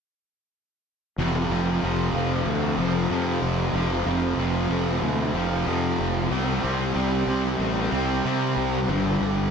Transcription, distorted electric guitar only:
1.18 1.82 F2 medium
1.18 1.51 C3 medium
1.18 1.49 F3 medium
1.49 1.82 C3 medium
1.49 1.84 F3 medium
1.82 3.10 F2 medium
1.82 2.16 C3 medium
1.82 2.14 F3 medium
2.15 2.80 C3 soft
2.15 2.77 F3 medium
2.79 3.11 C3 medium
2.79 3.11 F3 medium
3.10 3.73 F2 medium
3.10 3.75 C3 medium
3.10 3.76 F3 medium
3.74 4.37 F2 medium
3.74 4.07 C3 medium
3.74 4.05 F3 medium
4.07 4.39 C3 medium
4.07 4.39 F3 medium
4.38 5.03 F2 medium
4.38 4.71 C3 medium
4.38 4.69 F3 medium
4.70 5.36 C3 medium
4.70 5.33 F3 medium
5.35 5.65 C3 medium
5.35 5.67 F3 medium
5.65 6.29 F2 medium
5.65 6.29 C3 medium
5.65 6.30 F3 medium
6.30 6.94 C3 medium
6.30 6.65 G3 medium
6.30 6.63 C4 medium
6.63 6.96 G3 medium
6.63 6.97 C4 medium
6.95 7.60 C3 medium
6.95 7.30 G3 medium
6.95 7.27 C4 medium
7.28 7.94 G3 soft
7.28 7.92 C4 medium
7.92 8.25 G3 medium
7.92 8.27 C4 medium
8.25 8.87 C3 medium
8.25 8.88 G3 medium
8.25 8.93 C4 medium
8.88 9.51 G2 medium
8.88 9.23 D3 medium
8.88 9.21 G3 medium
9.22 9.51 D3 medium
9.22 9.51 G3 medium

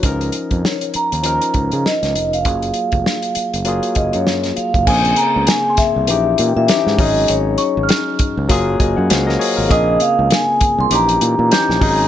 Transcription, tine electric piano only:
0.03 1.14 F3 medium
0.03 1.15 C#4 medium
0.03 1.15 D#4 medium
0.03 1.16 A#4 medium
1.23 2.35 F3 medium
1.23 2.35 C#4 medium
1.23 2.36 D#4 medium
1.23 2.36 A#4 medium
2.44 3.56 F#3 medium
2.44 3.56 A#3 medium
2.44 3.57 F4 medium
2.44 3.57 G#4 medium
3.65 4.77 F#3 medium
3.65 4.77 A#3 medium
3.65 4.78 F4 medium
3.65 4.78 G#4 medium
4.86 5.98 C#3 medium
4.86 5.98 A#3 medium
4.86 5.99 C4 medium
4.86 5.99 G#4 medium
6.08 6.63 E3 medium
6.08 6.64 C#4 medium
6.08 6.64 D#4 medium
6.08 6.65 G4 medium
6.68 6.98 E3 medium
6.68 6.98 C#4 medium
6.68 6.99 D#4 medium
6.68 7.00 G4 medium
6.98 8.09 F#3 medium
6.98 8.10 C#4 medium
6.98 8.10 D#4 medium
6.98 8.11 G#4 medium
8.48 9.05 F#3 loud
8.48 9.05 A#3 medium
8.48 8.80 F4 medium
8.48 8.81 G#4 loud
8.80 8.97 D#5 medium
8.80 8.97 G#5 medium
8.97 9.10 C#5 medium
8.97 9.09 F#5 medium
9.10 9.27 C5 medium
9.10 9.27 F5 medium
9.27 9.40 A#4 medium
9.27 9.39 D#5 medium
9.39 9.57 G#4 medium
9.39 9.56 C#5 medium
9.57 9.86 F4 medium
9.57 9.86 A#4 medium
9.68 10.80 C#3 medium
9.68 10.81 A#3 medium
9.68 10.81 C4 medium
9.68 10.82 G#4 medium
10.89 11.46 E3 medium
10.89 11.46 C#4 medium
10.89 11.47 D#4 medium
10.89 11.47 G4 medium
11.50 11.81 E3 medium
11.50 11.80 C#4 medium
11.50 11.81 D#4 medium
11.50 11.83 G4 medium
11.80 12.08 F#3 medium
11.80 12.08 C#4 medium
11.80 12.08 D#4 medium
11.80 12.08 G#4 loud

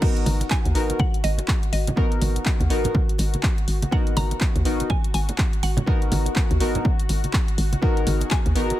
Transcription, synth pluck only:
0.51 1.01 G#5 loud
1.00 1.25 F#5 loud
1.24 1.71 D#5 medium
1.73 3.15 D#5 medium
3.92 4.17 F#5 loud
4.17 4.92 A#5 loud
4.90 5.01 G#5 loud
5.14 5.64 G#5 loud
5.63 6.57 F#5 medium
8.31 8.77 G#5 loud

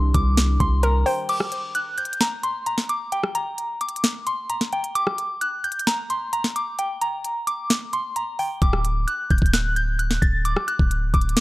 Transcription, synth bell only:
0.00 0.12 C6 medium
0.14 0.57 D6 medium
0.60 0.80 C6 medium
0.83 1.03 A#5 medium
1.06 1.26 G5 medium
1.29 1.72 D6 loud
1.75 1.95 F#6 medium
1.98 2.18 G6 medium
2.21 2.41 A#5 medium
2.43 2.64 C6 medium
2.66 2.87 A#5 medium
2.89 3.09 D6 medium
3.12 3.32 G5 medium
3.35 3.78 A#5 medium
3.81 4.24 D6 medium
4.27 4.47 C6 medium
4.50 4.70 A#5 medium
4.73 4.93 G5 medium
4.95 5.38 D6 loud
5.41 5.61 F#6 medium
5.64 5.84 G6 medium
5.87 6.07 A#5 medium
6.10 6.30 C6 medium
6.33 6.53 A#5 medium
6.56 6.76 D6 medium
6.79 6.99 G5 medium
7.01 7.45 A#5 medium
7.47 7.90 D6 medium
7.93 8.13 C6 medium
8.16 8.36 A#5 medium
8.39 8.59 G5 medium
8.62 9.05 D6 loud
9.07 9.28 F#6 medium
9.31 9.51 G6 medium
9.54 9.74 F#6 medium
9.76 9.96 G6 medium
9.99 10.19 F#6 medium
10.22 10.42 A6 medium
10.45 10.65 D6 medium
10.68 11.11 F#6 medium
11.14 11.40 D6 medium

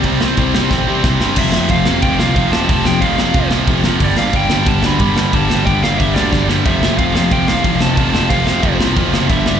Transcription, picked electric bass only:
0.04 0.16 C2 loud
0.21 0.33 C2 medium
0.38 0.50 C2 loud
0.55 0.67 C2 medium
0.71 0.83 A1 medium
0.88 1.00 C3 medium
1.04 1.16 C2 loud
1.21 1.33 G2 medium
1.37 1.53 F1 loud
1.53 1.69 F1 loud
1.70 1.86 F1 medium
1.87 2.03 F1 medium
2.03 2.19 F1 medium
2.20 2.36 C2 medium
2.36 2.52 F1 loud
2.54 2.69 F1 medium
2.69 2.85 F1 loud
2.86 3.02 F1 medium
3.02 3.17 F1 loud
3.18 3.34 F1 loud
3.34 3.50 F1 loud
3.52 3.67 C2 medium
3.68 3.84 F1 medium
3.85 4.00 F1 medium
4.00 4.16 G1 loud
4.18 4.33 G1 medium
4.33 4.50 G1 medium
4.51 4.66 G1 medium
4.67 4.83 G1 loud
4.85 4.99 D2 loud
5.00 5.16 G1 loud
5.17 5.33 G1 medium
5.34 5.49 G1 loud
5.50 5.66 G1 medium
5.68 5.83 G1 loud
5.83 5.99 G1 medium
6.00 6.16 G1 medium
6.17 6.32 D2 medium
6.33 6.48 G1 medium
6.50 6.65 G1 medium
6.66 6.81 F1 loud
6.84 6.99 F1 medium
6.99 7.15 F1 medium
7.15 7.31 F1 medium
7.32 7.47 F1 loud
7.48 7.64 C2 medium
7.64 7.80 F1 medium
7.81 7.96 F1 medium
7.97 8.13 F1 loud
8.14 8.30 F1 medium
8.31 8.47 F1 loud
8.47 8.63 F1 medium
8.64 8.79 F1 medium
8.80 8.96 C2 medium
8.97 9.12 F1 loud
9.13 9.29 F#1 loud
9.30 9.46 G1 loud
9.47 9.60 G1 medium

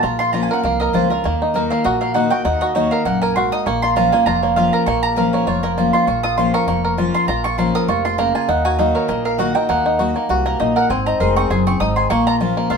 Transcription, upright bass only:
0.03 0.46 A#1 loud
0.64 0.90 C2 medium
0.94 1.20 C#2 medium
1.25 1.67 D#2 loud
1.85 2.28 A#1 medium
2.45 2.88 D#2 loud
3.05 3.48 A#1 medium
3.66 4.09 A#1 medium
4.26 4.69 F1 medium
4.87 5.29 A#1 medium
5.47 5.90 F1 medium
6.07 6.50 A#1 loud
6.67 7.10 F1 medium
7.28 7.71 A#1 medium
7.88 8.31 F1 medium
8.48 8.91 D#2 loud
9.09 9.51 A#1 medium
9.69 10.12 D#2 loud
10.29 10.55 C2 medium
10.60 10.86 A#1 medium
10.90 11.11 G#1 loud
11.20 11.46 F1 medium
11.50 11.76 F#1 medium
11.80 12.06 G#1 medium
12.10 12.53 A#1 loud
12.70 12.77 C2 medium

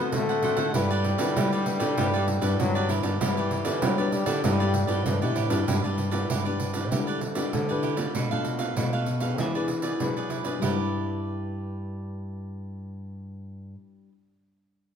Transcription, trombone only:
0.00 0.15 B3 loud
0.13 0.76 A3 medium
0.74 2.59 G3 medium
2.60 2.92 F#3 medium
3.21 3.84 E3 medium
3.83 4.11 F#3 medium
4.12 4.41 G3 medium
4.44 5.08 G3 medium
5.06 5.68 E3 medium

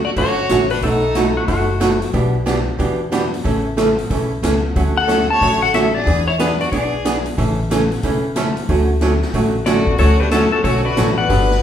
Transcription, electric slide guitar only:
0.05 0.10 D5 medium
0.18 0.72 C#5 loud
0.71 0.83 B4 medium
0.83 1.38 A4 medium
1.37 1.47 F#4 medium
1.48 1.98 F#4 medium
4.97 5.30 F#5 medium
5.30 5.60 A5 medium
5.62 5.74 F#5 medium
5.75 5.94 E5 loud
5.94 6.27 D5 medium
6.28 6.39 C#5 medium
6.40 6.59 B4 medium
6.61 6.71 D5 medium
6.72 7.22 D5 medium
9.66 9.97 A4 medium
9.66 9.99 D5 medium
9.99 10.18 A4 medium
9.99 10.20 C#5 medium
10.20 10.31 G4 medium
10.20 10.31 B4 medium
10.32 10.51 F#4 medium
10.32 10.51 A4 medium
10.52 10.64 F#4 medium
10.52 10.63 A4 medium
10.64 10.83 A4 medium
10.64 10.85 C#5 loud
10.85 11.15 B4 medium
10.85 11.17 D5 loud
11.18 11.62 D5 medium
11.18 11.62 F#5 medium

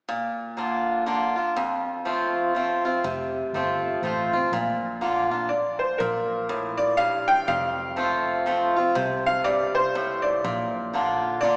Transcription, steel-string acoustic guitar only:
0.09 1.03 A#2 medium
0.57 1.05 D3 soft
0.57 1.05 A#3 soft
0.57 1.05 D4 medium
0.57 1.05 F4 soft
1.06 1.35 D3 medium
1.06 1.35 A#3 medium
1.06 1.36 D4 medium
1.06 1.35 F4 medium
1.36 1.56 D4 soft
1.36 1.55 F4 medium
1.56 2.51 F2 medium
2.05 2.53 F3 soft
2.05 2.53 A3 medium
2.05 2.54 C4 medium
2.05 2.54 F4 medium
2.55 2.83 F3 soft
2.55 2.84 A3 medium
2.55 2.84 C4 medium
2.55 2.84 F4 medium
2.85 3.04 C4 soft
2.85 3.04 F4 medium
3.04 3.99 C3 medium
3.54 4.01 F3 soft
3.54 4.02 A3 soft
3.54 4.02 C4 medium
3.54 4.02 F4 soft
4.03 4.32 F3 soft
4.03 4.32 A3 medium
4.03 4.32 C4 medium
4.03 4.32 F4 medium
4.33 4.53 C4 soft
4.33 4.52 F4 soft
4.53 5.47 A#2 medium
5.01 5.30 D3 soft
5.01 5.30 A#3 medium
5.01 5.30 D4 soft
5.01 5.30 F4 medium
5.31 5.51 D4 soft
5.31 5.50 F4 soft
6.00 6.95 A#2 medium
6.49 6.97 A2 medium
6.97 7.46 G2 medium
7.48 8.43 F2 medium
7.96 8.44 F3 soft
7.96 8.44 A3 medium
7.96 8.45 C4 medium
7.96 8.45 F4 medium
8.46 8.75 F3 medium
8.46 8.75 A3 medium
8.46 8.76 C4 medium
8.46 8.75 F4 medium
8.76 8.96 C4 soft
8.76 8.95 F4 medium
8.95 9.90 C3 medium
9.45 9.92 G2 medium
9.95 10.42 A2 medium
10.44 11.39 A#2 medium
10.93 11.41 D3 soft
10.93 11.41 A#3 medium
10.93 11.42 D4 medium
10.93 11.42 F4 medium
11.43 11.57 D3 medium
11.43 11.57 A#3 medium
11.43 11.57 D4 medium
11.43 11.57 F4 medium

